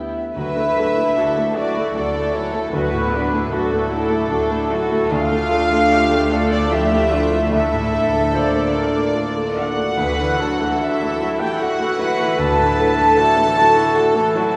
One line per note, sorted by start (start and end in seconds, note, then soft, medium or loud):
0.00 0.11 D2 medium
0.00 0.34 D3 soft
0.00 0.11 B3 medium
0.00 0.32 B3 soft
0.00 0.38 B3 soft
0.00 0.11 E4 medium
0.00 0.32 G4 soft
0.00 0.39 G4 soft
0.00 3.84 E5 soft
0.00 0.15 G5 soft
0.15 0.36 E5 soft
0.35 1.06 D2 medium
0.35 2.69 D2 soft
0.35 2.71 D3 medium
0.35 0.55 F#3 soft
0.35 1.52 E4 medium
0.35 0.54 F#4 soft
0.35 1.12 B4 medium
0.35 1.51 E5 medium
0.35 1.57 E5 medium
0.55 0.88 A3 soft
0.55 0.77 A3 soft
0.55 2.90 D4 soft
0.55 0.77 E4 soft
0.77 0.97 F#3 soft
0.77 0.97 F#4 soft
0.77 1.09 A4 soft
0.96 1.17 A3 soft
0.96 1.29 A3 soft
0.96 1.17 E4 soft
0.96 2.32 F#4 soft
1.15 1.86 D2 medium
1.15 1.35 F#3 soft
1.15 1.35 F#4 medium
1.15 1.49 F#4 soft
1.15 1.56 A4 medium
1.15 3.50 D5 medium
1.35 1.69 A3 soft
1.35 1.57 A3 soft
1.35 1.56 E4 soft
1.35 5.25 A5 soft
1.54 1.76 F#3 soft
1.54 1.93 D4 medium
1.54 1.88 E4 soft
1.54 1.76 F#4 soft
1.54 1.95 F#4 medium
1.54 1.95 D5 medium
1.54 1.93 F#5 soft
1.76 1.96 A3 soft
1.76 2.08 A3 soft
1.76 1.95 E4 soft
1.94 2.63 D2 medium
1.94 2.13 F#3 soft
1.94 2.33 D4 medium
1.94 2.13 F#4 soft
1.94 2.27 F#4 soft
1.94 2.73 A4 medium
1.94 2.35 D5 medium
1.94 2.34 D5 medium
1.94 3.89 F#5 medium
2.14 2.33 A3 soft
2.14 2.46 A3 soft
2.14 2.33 E4 medium
2.33 2.53 F#3 soft
2.33 2.53 C#4 medium
2.33 2.66 E4 soft
2.33 3.30 F#4 soft
2.33 2.53 F#4 soft
2.33 2.56 C#5 medium
2.33 2.54 C#5 medium
2.53 2.73 A3 soft
2.53 2.85 A3 soft
2.53 2.73 A3 medium
2.53 2.73 E4 soft
2.53 2.73 A4 medium
2.53 2.74 A4 medium
2.72 3.42 D2 medium
2.72 5.07 D2 medium
2.72 5.09 D3 medium
2.72 2.91 F#3 medium
2.72 3.52 B3 medium
2.72 2.91 F#4 medium
2.72 3.12 F#4 medium
2.72 3.51 B4 medium
2.72 3.54 B4 medium
2.92 3.25 A2 soft
2.92 3.12 A3 medium
2.92 5.29 D4 soft
2.92 3.13 E4 soft
3.13 3.32 F#3 medium
3.13 3.52 D4 medium
3.13 3.32 F#4 medium
3.13 3.44 A4 soft
3.31 3.52 A3 soft
3.31 3.64 A3 soft
3.31 3.52 E4 medium
3.31 4.69 F#4 soft
3.51 4.20 D2 medium
3.51 3.70 F#3 medium
3.51 5.11 A3 medium
3.51 3.90 F#4 medium
3.51 3.70 F#4 soft
3.51 3.83 F#4 soft
3.51 5.11 A4 medium
3.51 5.13 A4 medium
3.51 5.89 D5 medium
3.71 3.90 A3 medium
3.71 4.02 A3 medium
3.71 3.90 E4 soft
3.90 4.10 F#3 medium
3.90 4.29 E4 medium
3.90 4.22 E4 soft
3.90 4.10 F#4 medium
3.90 4.29 F#5 medium
4.10 4.41 A3 medium
4.10 4.30 A3 soft
4.10 4.29 E4 soft
4.10 6.49 D6 soft
4.28 5.01 D2 medium
4.28 4.49 F#3 medium
4.28 4.70 D4 medium
4.28 4.62 F#4 medium
4.28 4.49 F#4 medium
4.28 5.15 F#5 medium
4.50 4.70 A3 medium
4.50 4.83 A3 soft
4.50 4.70 E4 medium
4.70 4.91 F#3 medium
4.70 5.03 E4 medium
4.70 5.15 F#4 soft
4.70 5.11 F#4 medium
4.70 4.92 F#4 medium
4.91 5.11 A3 soft
4.91 5.10 A3 medium
4.91 5.12 E4 soft
5.10 9.74 D2 medium
5.10 7.48 D2 medium
5.10 7.51 D3 medium
5.10 8.30 A3 medium
5.10 8.30 D4 medium
5.10 6.47 F4 medium
5.10 5.90 F4 medium
5.10 6.49 F5 loud
5.10 6.51 F5 loud
5.31 5.63 A3 medium
5.31 7.72 D4 medium
5.51 5.82 A4 soft
5.71 6.03 A3 medium
5.90 6.22 F4 medium
5.90 6.30 G4 medium
5.90 8.32 D5 medium
6.11 6.43 A3 medium
6.31 6.63 D4 medium
6.31 6.71 A4 medium
6.50 6.83 A3 soft
6.50 6.71 D4 medium
6.50 6.69 D5 medium
6.50 6.71 D5 medium
6.50 8.95 D6 medium
6.70 7.03 F3 soft
6.70 7.52 E4 medium
6.70 7.11 G4 medium
6.70 7.22 E5 medium
6.70 7.52 E5 medium
6.92 7.24 A3 soft
7.10 7.43 D4 medium
7.10 7.52 F4 medium
7.32 7.65 A3 soft
7.52 9.95 D2 medium
7.52 9.96 D3 medium
7.52 8.33 E4 medium
7.52 9.58 A4 medium
7.52 8.36 E5 medium
7.52 8.33 E5 medium
7.72 8.05 A2 soft
7.72 10.17 D4 soft
7.92 8.25 A4 soft
8.13 8.46 A3 soft
8.33 9.75 A#3 medium
8.33 9.76 D4 medium
8.33 9.55 D4 medium
8.33 8.66 F4 soft
8.33 8.77 C5 medium
8.33 12.24 D5 soft
8.33 9.59 D5 medium
8.33 9.58 D5 medium
8.53 8.87 A3 soft
8.73 9.07 D4 soft
8.73 9.16 A#4 medium
8.95 9.28 A3 soft
8.95 12.86 D6 soft
9.14 9.48 F4 soft
9.14 9.60 A4 medium
9.35 9.69 A3 soft
9.35 10.99 A4 soft
9.56 9.90 D4 soft
9.56 10.77 F#4 medium
9.56 9.99 D5 medium
9.56 10.82 F#5 medium
9.56 10.81 F#5 medium
9.77 10.38 A3 soft
9.77 9.98 A3 soft
9.97 12.34 D2 medium
9.97 10.66 D2 medium
9.97 12.37 D3 medium
9.97 10.17 D3 medium
9.97 14.57 E4 medium
9.97 10.37 B4 medium
10.18 10.40 E3 medium
10.18 10.51 A3 soft
10.18 12.57 D4 soft
10.39 10.60 F#3 medium
10.39 12.17 A3 soft
10.39 10.72 A4 soft
10.39 11.60 A4 medium
10.59 10.80 E3 medium
10.59 10.92 A3 soft
10.59 11.98 F#4 soft
10.79 11.00 D3 medium
10.79 11.40 E4 medium
10.79 11.12 F#4 soft
10.79 13.15 E5 soft
10.79 11.41 E5 medium
11.00 11.20 E3 medium
11.00 11.33 A3 soft
11.00 11.78 A4 soft
11.20 11.40 F#3 medium
11.20 11.52 E4 soft
11.20 11.58 F#5 soft
11.40 11.60 E3 medium
11.40 11.72 A3 soft
11.40 11.60 G4 medium
11.40 11.60 G5 medium
11.40 13.75 E6 soft
11.59 11.79 D3 medium
11.59 12.39 F#4 medium
11.59 11.92 F#4 soft
11.59 12.00 F#4 medium
11.59 13.56 F#5 medium
11.59 12.39 F#5 medium
11.59 12.40 F#5 medium
11.80 12.00 E3 medium
11.80 12.11 A3 soft
11.80 13.35 A4 medium
11.99 12.19 F#3 medium
11.99 12.31 E4 medium
11.99 12.96 F#4 medium
11.99 13.16 B4 medium
12.19 12.39 E3 medium
12.19 12.76 A3 soft
12.19 12.51 A3 soft
12.37 13.04 D2 medium
12.37 14.57 D2 medium
12.37 14.57 D3 medium
12.37 12.57 D3 medium
12.37 14.52 A4 loud
12.37 14.32 A5 medium
12.37 14.56 A5 loud
12.58 12.91 A2 soft
12.58 12.78 E3 medium
12.58 14.57 D4 soft
12.77 12.98 F#3 medium
12.77 14.54 A3 medium
12.77 13.10 A4 soft
12.97 13.18 E3 medium
12.97 13.29 A3 medium
12.97 14.35 F#4 medium
13.17 13.37 D3 medium
13.17 13.49 F#4 medium
13.17 13.57 A4 medium
13.17 14.57 E5 medium
13.36 13.57 E3 medium
13.36 13.69 A3 medium
13.36 14.15 A4 medium
13.56 13.77 F#3 medium
13.56 13.89 E4 medium
13.56 13.97 F#4 medium
13.56 13.95 F#5 medium
13.76 13.96 E3 medium
13.76 14.09 A3 soft
13.76 14.57 E6 medium
13.96 14.16 D3 medium
13.96 14.28 F#4 medium
13.96 14.36 A4 medium
13.96 14.57 F#5 medium
14.15 14.36 E3 medium
14.15 14.47 A3 medium
14.35 14.55 F#3 medium
14.35 14.57 E4 medium
14.35 14.57 F#4 medium